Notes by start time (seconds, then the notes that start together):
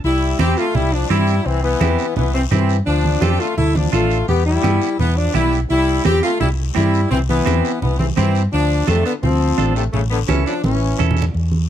0.04 C2 G3 E4, high conga, long guiro
0.39 E2 C4 E4 G4, high conga, short guiro
0.57 A3 F4, short guiro
0.75 C2 G3 E4, high conga, low conga, long guiro
0.93 F3 D4
1.10 G2 G3 C4 E4 G4, high conga, short guiro
1.27 short guiro
1.46 C2 E3 C4, high conga, long guiro
1.64 E3 B3
1.81 E2 C4 E4 G4, high conga, short guiro
1.99 short guiro
2.16 C2 E3 B3, high conga, low conga, long guiro
2.34 E3 C4
2.51 G2 E3 C4 E4 G4, high conga, low conga, short guiro
2.69 short guiro
2.86 D2 F3 D4, high conga, long guiro
3.04 high conga
3.22 F2 C4 D4 F4 G4 A4, high conga, short guiro
3.40 A3 F4, short guiro
3.57 D2 A3 E4, high conga, low conga, long guiro
3.75 F3 D4, high conga
3.92 A1 A3 D4 F4 A4, high conga, short guiro
4.11 short guiro
4.28 E2 B3 G4, high conga, low conga, long guiro
4.46 G3 E4
4.63 G2 B3 E4 G4, high conga, short guiro
4.82 short guiro
4.99 E2 E3 B3, high conga, low conga, long guiro
5.17 F3 D4
5.34 B1 G3 B3 E4 G4, high conga, short guiro
5.53 short guiro
5.70 C2 G3 E4, high conga, long guiro
6.05 E2 C4 E4 G4, high conga, short guiro
6.23 A3 F4, short guiro
6.40 C2 G3 E4, high conga, low conga, long guiro
6.75 G2 G3 C4 E4 G4, high conga, short guiro
6.94 short guiro
7.11 C2 E3 C4, high conga, low conga, long guiro
7.29 E3 B3, high conga
7.46 E2 C4 E4 G4, high conga, short guiro
7.65 short guiro
7.81 C2 E3 B3, high conga, low conga, long guiro
7.99 E3 C4, high conga
8.17 G2 E3 C4 E4 G4, high conga, short guiro
8.35 short guiro
8.52 D2 F3 D4, high conga, long guiro
8.87 F2 C3 A3 D4 F4 A4, high conga, short guiro
9.05 D3 B3, short guiro
9.23 D2 F3 C4, high conga, low conga, long guiro
9.58 A1 D4 F4 A4, high conga, short guiro
9.75 C3 A3, short guiro
9.93 A1 C#3 A3, high conga, low conga, long guiro
10.11 D3 B3
10.28 C#2 E3 C#4 E4 A4, high conga, short guiro
10.46 F3 D4, short guiro
10.64 A1 E3 C#4, high conga, long guiro
10.99 E2 C#4 E4 A4, low conga, short guiro
11.11 low conga
11.17 short guiro
11.22 low conga
11.34 E2, high conga, long guiro
11.52 high conga